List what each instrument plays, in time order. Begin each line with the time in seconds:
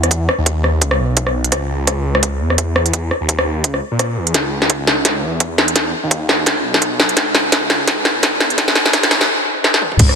Already playing: detuned saw bass E2
0.03 cross-stick, closed hi-hat
0.11 kick, closed hi-hat
0.29 cross-stick
0.38 detuned saw bass D#2
0.46 kick, closed hi-hat
0.64 cross-stick
0.82 detuned saw bass C#2, kick, closed hi-hat
0.91 cross-stick
0.99 detuned saw bass B1
1.17 kick, closed hi-hat
1.27 cross-stick
1.44 closed hi-hat
1.52 detuned saw bass C#2, kick, cross-stick, closed hi-hat
1.87 kick, cross-stick, closed hi-hat
2.15 cross-stick
2.23 kick, closed hi-hat
2.40 detuned saw bass E2
2.50 cross-stick
2.58 kick, closed hi-hat
2.76 cross-stick
2.86 closed hi-hat
2.93 kick, closed hi-hat
3.11 cross-stick
3.21 detuned saw bass D#2
3.29 kick, closed hi-hat
3.39 cross-stick
3.64 detuned saw bass C#2, kick, closed hi-hat
3.74 cross-stick
3.91 detuned saw bass A#2
3.99 kick, cross-stick, closed hi-hat
4.17 detuned saw bass E2
4.27 closed hi-hat
4.34 detuned saw bass C#2, kick, snare, closed hi-hat
4.62 snare
4.70 kick, closed hi-hat
4.87 snare
5.05 kick, snare, closed hi-hat
5.23 detuned saw bass E2
5.40 kick, closed hi-hat
5.58 snare
5.68 closed hi-hat
5.76 kick, snare, closed hi-hat
6.03 detuned saw bass D#2
6.11 kick, closed hi-hat
6.29 snare
6.46 detuned saw bass C#2, kick, snare, closed hi-hat
6.64 detuned saw bass B1
6.74 snare
6.82 kick, closed hi-hat
7.00 snare
7.09 closed hi-hat
7.17 detuned saw bass C#2, kick, snare, closed hi-hat
7.35 snare
7.52 kick, snare, closed hi-hat
7.70 snare
7.88 kick, snare, closed hi-hat
8.05 detuned saw bass E2, snare
8.23 kick, snare, closed hi-hat
8.40 snare
8.50 closed hi-hat
8.58 kick, snare, closed hi-hat
8.68 snare
8.75 snare
8.85 detuned saw bass D#2, snare
8.93 kick, snare, closed hi-hat
9.03 snare, closed hi-hat
9.11 snare
9.21 snare
9.64 snare
9.74 snare
9.82 mid tom
9.92 mid tom
9.99 detuned saw bass C#2, kick, closed hi-hat, crash
10.09 cross-stick